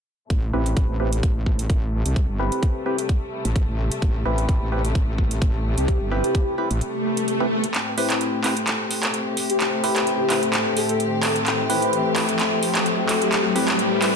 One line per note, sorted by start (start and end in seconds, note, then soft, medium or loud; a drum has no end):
0.30 0.52 A1 medium
0.30 7.70 C3 medium
0.30 7.70 G3 medium
0.30 7.70 A3 medium
0.30 kick loud
0.30 closed hi-hat soft
0.53 0.75 A1 medium
0.53 0.97 C4 medium
0.53 0.97 E4 medium
0.53 0.97 G4 medium
0.53 0.97 B4 medium
0.66 closed hi-hat medium
0.77 0.87 A1 medium
0.77 kick loud
0.77 closed hi-hat medium
0.89 1.21 A1 medium
1.00 1.10 C4 medium
1.00 1.10 E4 medium
1.00 1.10 G4 medium
1.00 1.10 B4 medium
1.13 closed hi-hat medium
1.23 1.68 A1 medium
1.23 kick loud
1.23 closed hi-hat medium
1.46 kick medium
1.59 closed hi-hat medium
1.70 2.03 A1 medium
1.70 kick loud
1.70 closed hi-hat medium
2.06 2.27 C2 medium
2.06 closed hi-hat medium
2.16 kick loud
2.16 closed hi-hat soft
2.29 2.50 G1 medium
2.39 2.83 C4 medium
2.39 2.83 E4 medium
2.39 2.83 G4 medium
2.39 2.83 B4 medium
2.52 closed hi-hat medium
2.63 kick loud
2.63 closed hi-hat soft
2.86 2.97 C4 medium
2.86 2.97 E4 medium
2.86 2.97 G4 medium
2.86 2.97 B4 medium
2.98 closed hi-hat medium
3.09 kick loud
3.09 closed hi-hat medium
3.45 3.66 A1 medium
3.45 closed hi-hat medium
3.56 kick loud
3.56 closed hi-hat medium
3.68 3.90 A1 medium
3.92 closed hi-hat medium
4.02 4.24 A1 loud
4.02 kick loud
4.02 closed hi-hat soft
4.25 4.47 A1 loud
4.25 4.69 C4 medium
4.25 4.69 E4 medium
4.25 4.69 G4 medium
4.25 4.69 B4 medium
4.38 closed hi-hat medium
4.49 4.59 A1 medium
4.49 kick loud
4.49 closed hi-hat soft
4.61 4.94 A1 medium
4.72 4.83 C4 medium
4.72 4.83 E4 medium
4.72 4.83 G4 medium
4.72 4.83 B4 medium
4.85 closed hi-hat medium
4.95 5.40 A1 medium
4.95 kick loud
4.95 closed hi-hat medium
5.18 kick medium
5.31 closed hi-hat medium
5.42 5.75 A1 medium
5.42 kick loud
5.42 closed hi-hat soft
5.78 5.99 C2 medium
5.78 5.84 G4 medium
5.78 closed hi-hat medium
5.88 5.96 G4 medium
5.88 kick loud
5.88 closed hi-hat soft
6.01 6.22 G1 medium
6.11 6.55 C4 medium
6.11 6.55 E4 medium
6.11 6.58 G4 medium
6.11 6.55 G4 medium
6.11 6.55 B4 medium
6.24 closed hi-hat medium
6.35 kick loud
6.35 closed hi-hat soft
6.58 6.69 C4 medium
6.58 6.69 E4 medium
6.58 6.69 G4 medium
6.58 6.69 B4 medium
6.70 6.81 A1 medium
6.70 closed hi-hat medium
6.81 closed hi-hat medium
6.81 swell medium
7.17 closed hi-hat medium
7.28 closed hi-hat soft
7.40 7.46 C4 medium
7.40 7.46 E4 medium
7.40 7.46 G4 medium
7.40 7.46 B4 medium
7.64 closed hi-hat medium
7.74 14.16 A2 medium
7.74 14.16 A3 medium
7.74 14.16 C4 medium
7.74 14.16 G4 medium
7.74 14.16 A4 medium
7.74 clap soft
7.74 closed hi-hat soft
7.74 riser medium
7.98 8.42 C4 medium
7.98 8.42 E4 medium
7.98 8.42 G4 medium
7.98 8.42 B4 loud
7.98 open hi-hat loud
8.10 clap soft
8.10 closed hi-hat medium
8.16 14.16 E5 medium
8.21 closed hi-hat medium
8.44 8.55 C4 medium
8.44 8.55 E4 medium
8.44 8.55 G4 medium
8.44 8.55 B4 medium
8.44 clap soft
8.44 open hi-hat loud
8.57 closed hi-hat medium
8.64 14.16 C5 medium
8.64 clap medium
8.64 closed hi-hat medium
8.91 open hi-hat loud
9.03 clap soft
9.03 closed hi-hat medium
9.14 closed hi-hat medium
9.37 open hi-hat loud
9.50 9.57 G4 medium
9.50 closed hi-hat medium
9.60 9.68 G4 medium
9.60 clap soft
9.60 closed hi-hat medium
9.84 10.28 C4 medium
9.84 10.28 E4 medium
9.84 10.28 G4 medium
9.84 10.30 G4 medium
9.84 10.28 B4 loud
9.84 open hi-hat loud
9.96 clap soft
9.96 closed hi-hat medium
10.07 closed hi-hat medium
10.30 10.41 C4 medium
10.30 10.41 E4 medium
10.30 10.41 G4 medium
10.30 10.41 B4 medium
10.30 clap medium
10.30 open hi-hat loud
10.43 closed hi-hat medium
10.53 clap medium
10.53 closed hi-hat medium
10.77 10.94 A4 medium
10.77 open hi-hat loud
10.89 closed hi-hat medium
11.00 closed hi-hat medium
11.23 11.31 A4 medium
11.23 clap medium
11.23 open hi-hat loud
11.36 11.43 A4 medium
11.36 closed hi-hat medium
11.46 clap medium
11.46 closed hi-hat soft
11.70 12.14 C4 medium
11.70 12.14 E4 medium
11.70 12.14 G4 medium
11.70 12.14 B4 loud
11.70 open hi-hat loud
11.82 closed hi-hat medium
11.93 closed hi-hat soft
12.16 12.27 C4 medium
12.16 12.27 E4 medium
12.16 12.27 G4 medium
12.16 12.27 B4 medium
12.16 clap medium
12.16 open hi-hat loud
12.29 closed hi-hat medium
12.39 clap medium
12.39 closed hi-hat medium
12.63 open hi-hat loud
12.75 clap medium
12.75 closed hi-hat medium
12.86 closed hi-hat soft
13.09 clap medium
13.09 open hi-hat loud
13.22 13.29 G4 medium
13.22 closed hi-hat medium
13.32 13.40 G4 medium
13.32 clap medium
13.32 closed hi-hat soft
13.56 14.00 C4 medium
13.56 14.00 E4 medium
13.56 14.00 G4 medium
13.56 14.02 G4 loud
13.56 14.00 B4 loud
13.56 open hi-hat loud
13.68 clap medium
13.68 closed hi-hat medium
13.79 closed hi-hat soft
14.02 14.13 C4 medium
14.02 14.13 E4 medium
14.02 14.13 G4 medium
14.02 14.13 B4 medium
14.02 clap medium
14.02 open hi-hat loud